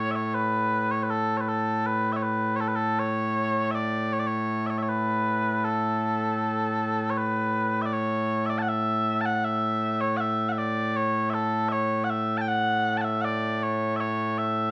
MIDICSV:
0, 0, Header, 1, 2, 480
1, 0, Start_track
1, 0, Key_signature, 3, "major"
1, 0, Tempo, 759494
1, 216, Time_signature, 3, 2, 24, 8
1, 9297, End_track
2, 0, Start_track
2, 0, Title_t, "Bagpipes"
2, 0, Program_c, 0, 109
2, 0, Note_on_c, 0, 45, 89
2, 0, Note_on_c, 0, 57, 89
2, 0, Note_on_c, 0, 73, 100
2, 71, Note_off_c, 0, 73, 0
2, 71, Note_on_c, 0, 76, 82
2, 98, Note_off_c, 0, 76, 0
2, 98, Note_on_c, 0, 73, 82
2, 217, Note_off_c, 0, 73, 0
2, 217, Note_on_c, 0, 71, 100
2, 576, Note_off_c, 0, 71, 0
2, 576, Note_on_c, 0, 73, 83
2, 652, Note_off_c, 0, 73, 0
2, 652, Note_on_c, 0, 71, 66
2, 697, Note_off_c, 0, 71, 0
2, 697, Note_on_c, 0, 69, 96
2, 867, Note_off_c, 0, 69, 0
2, 867, Note_on_c, 0, 73, 62
2, 889, Note_off_c, 0, 73, 0
2, 889, Note_on_c, 0, 71, 62
2, 938, Note_off_c, 0, 71, 0
2, 938, Note_on_c, 0, 69, 81
2, 1178, Note_off_c, 0, 69, 0
2, 1178, Note_on_c, 0, 71, 96
2, 1343, Note_off_c, 0, 71, 0
2, 1343, Note_on_c, 0, 76, 61
2, 1368, Note_off_c, 0, 76, 0
2, 1368, Note_on_c, 0, 73, 61
2, 1406, Note_off_c, 0, 73, 0
2, 1406, Note_on_c, 0, 71, 77
2, 1618, Note_off_c, 0, 71, 0
2, 1618, Note_on_c, 0, 73, 88
2, 1646, Note_off_c, 0, 73, 0
2, 1646, Note_on_c, 0, 69, 88
2, 1694, Note_off_c, 0, 69, 0
2, 1694, Note_on_c, 0, 71, 73
2, 1743, Note_off_c, 0, 71, 0
2, 1743, Note_on_c, 0, 69, 86
2, 1891, Note_off_c, 0, 69, 0
2, 1891, Note_on_c, 0, 73, 99
2, 2346, Note_off_c, 0, 73, 0
2, 2346, Note_on_c, 0, 76, 93
2, 2370, Note_off_c, 0, 76, 0
2, 2370, Note_on_c, 0, 74, 93
2, 2609, Note_off_c, 0, 74, 0
2, 2609, Note_on_c, 0, 73, 95
2, 2650, Note_off_c, 0, 73, 0
2, 2650, Note_on_c, 0, 74, 79
2, 2698, Note_off_c, 0, 74, 0
2, 2698, Note_on_c, 0, 73, 93
2, 2948, Note_off_c, 0, 73, 0
2, 2948, Note_on_c, 0, 76, 79
2, 2972, Note_off_c, 0, 76, 0
2, 2972, Note_on_c, 0, 73, 79
2, 3022, Note_off_c, 0, 73, 0
2, 3022, Note_on_c, 0, 76, 57
2, 3050, Note_off_c, 0, 76, 0
2, 3050, Note_on_c, 0, 73, 57
2, 3089, Note_off_c, 0, 73, 0
2, 3089, Note_on_c, 0, 71, 92
2, 3568, Note_off_c, 0, 71, 0
2, 3568, Note_on_c, 0, 69, 74
2, 4488, Note_off_c, 0, 69, 0
2, 4488, Note_on_c, 0, 73, 68
2, 4534, Note_off_c, 0, 73, 0
2, 4534, Note_on_c, 0, 71, 96
2, 4941, Note_off_c, 0, 71, 0
2, 4941, Note_on_c, 0, 76, 76
2, 4966, Note_off_c, 0, 76, 0
2, 4966, Note_on_c, 0, 74, 76
2, 5011, Note_off_c, 0, 74, 0
2, 5011, Note_on_c, 0, 73, 91
2, 5348, Note_off_c, 0, 73, 0
2, 5348, Note_on_c, 0, 76, 88
2, 5371, Note_off_c, 0, 76, 0
2, 5371, Note_on_c, 0, 74, 88
2, 5426, Note_off_c, 0, 74, 0
2, 5426, Note_on_c, 0, 81, 78
2, 5449, Note_off_c, 0, 81, 0
2, 5449, Note_on_c, 0, 78, 78
2, 5489, Note_off_c, 0, 78, 0
2, 5489, Note_on_c, 0, 76, 102
2, 5821, Note_off_c, 0, 76, 0
2, 5821, Note_on_c, 0, 81, 87
2, 5849, Note_off_c, 0, 81, 0
2, 5849, Note_on_c, 0, 78, 87
2, 5969, Note_off_c, 0, 78, 0
2, 5969, Note_on_c, 0, 76, 108
2, 6325, Note_off_c, 0, 76, 0
2, 6325, Note_on_c, 0, 73, 92
2, 6427, Note_off_c, 0, 73, 0
2, 6427, Note_on_c, 0, 78, 105
2, 6449, Note_off_c, 0, 78, 0
2, 6449, Note_on_c, 0, 76, 105
2, 6629, Note_off_c, 0, 76, 0
2, 6629, Note_on_c, 0, 78, 73
2, 6649, Note_off_c, 0, 78, 0
2, 6649, Note_on_c, 0, 76, 73
2, 6688, Note_off_c, 0, 76, 0
2, 6688, Note_on_c, 0, 74, 93
2, 6928, Note_off_c, 0, 74, 0
2, 6928, Note_on_c, 0, 73, 94
2, 7143, Note_off_c, 0, 73, 0
2, 7143, Note_on_c, 0, 76, 84
2, 7168, Note_off_c, 0, 76, 0
2, 7168, Note_on_c, 0, 69, 84
2, 7387, Note_off_c, 0, 69, 0
2, 7387, Note_on_c, 0, 76, 104
2, 7409, Note_off_c, 0, 76, 0
2, 7409, Note_on_c, 0, 73, 104
2, 7611, Note_off_c, 0, 73, 0
2, 7611, Note_on_c, 0, 78, 75
2, 7647, Note_off_c, 0, 78, 0
2, 7647, Note_on_c, 0, 76, 94
2, 7821, Note_off_c, 0, 76, 0
2, 7821, Note_on_c, 0, 81, 83
2, 7843, Note_off_c, 0, 81, 0
2, 7843, Note_on_c, 0, 79, 83
2, 7887, Note_off_c, 0, 79, 0
2, 7887, Note_on_c, 0, 78, 113
2, 8199, Note_off_c, 0, 78, 0
2, 8199, Note_on_c, 0, 81, 70
2, 8224, Note_off_c, 0, 81, 0
2, 8224, Note_on_c, 0, 78, 70
2, 8245, Note_off_c, 0, 78, 0
2, 8245, Note_on_c, 0, 76, 82
2, 8351, Note_off_c, 0, 76, 0
2, 8351, Note_on_c, 0, 78, 100
2, 8372, Note_off_c, 0, 78, 0
2, 8372, Note_on_c, 0, 74, 100
2, 8613, Note_off_c, 0, 74, 0
2, 8613, Note_on_c, 0, 73, 86
2, 8825, Note_off_c, 0, 73, 0
2, 8825, Note_on_c, 0, 76, 100
2, 8850, Note_off_c, 0, 76, 0
2, 8850, Note_on_c, 0, 73, 100
2, 9090, Note_off_c, 0, 73, 0
2, 9090, Note_on_c, 0, 76, 95
2, 9293, Note_off_c, 0, 76, 0
2, 9297, Note_off_c, 0, 45, 0
2, 9297, Note_off_c, 0, 57, 0
2, 9297, End_track
0, 0, End_of_file